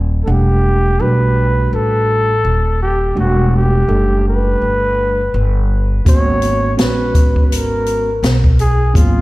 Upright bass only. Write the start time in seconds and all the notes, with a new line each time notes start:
Already playing: D#1
0.27 E1
1.00 B1
1.73 A1
2.45 D#1
3.17 E1
3.88 F#1
4.62 G1
5.34 G1
6.06 G#1
6.79 A#1
7.51 G#1
8.23 B1
8.95 G#1